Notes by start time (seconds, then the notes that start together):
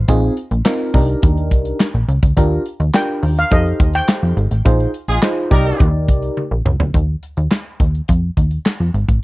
0.08 A#1 C4 D#4 F4 G#4, kick, closed hi-hat
0.37 closed hi-hat
0.51 A#1, closed hi-hat
0.65 C4 D#4 F4 A#4, snare, clap, closed hi-hat
0.80 closed hi-hat
0.94 C2 D4 D#4 G4 A#4, kick, open hi-hat
1.09 closed hi-hat
1.22 D#2, kick, closed hi-hat
1.37 closed hi-hat
1.51 C2, kick, closed hi-hat
1.65 closed hi-hat
1.80 snare, clap, closed hi-hat
1.94 A#1
2.08 C#2, closed hi-hat
2.23 D2, kick, closed hi-hat
2.37 D#2 D4 F4 G4 A#4, kick, closed hi-hat
2.66 closed hi-hat
2.80 D#2, closed hi-hat
2.94 D4 F4 G4 A#4 G5, snare, clap, closed hi-hat
3.23 D#2, open hi-hat
3.37 F5, closed hi-hat
3.51 F2 D#4 G4 A4 C5 D#5, kick, closed hi-hat
3.66 closed hi-hat
3.80 D#2, kick, closed hi-hat
3.94 G5, closed hi-hat
4.08 snare, clap, closed hi-hat
4.23 F2
4.37 G#1, closed hi-hat
4.51 A1, closed hi-hat
4.65 A#1 D#4 F4 G#4 C5, kick, closed hi-hat
4.80 closed hi-hat
4.94 closed hi-hat
5.08 A#1 D#4 F4 G#4, closed hi-hat
5.22 D#4 F4 G#4 C5, snare, clap, closed hi-hat
5.37 closed hi-hat
5.51 C2 D#4 G4 A#4 D5, kick, open hi-hat
5.66 closed hi-hat
5.79 D#2, kick, closed hi-hat
6.08 C2, kick, closed hi-hat
6.22 closed hi-hat
6.37 high tom
6.51 A#1
6.66 C#2, mid tom
6.80 D2, floor tom
6.94 D#2, kick, closed hi-hat
7.23 closed hi-hat
7.37 D#2, closed hi-hat
7.51 snare, clap
7.80 D#2, kick, closed hi-hat
7.95 closed hi-hat
8.08 F2, kick, closed hi-hat
8.37 D#2, kick, closed hi-hat
8.51 closed hi-hat
8.66 snare, clap
8.80 F2
8.94 G#1, closed hi-hat
9.08 A1, kick, closed hi-hat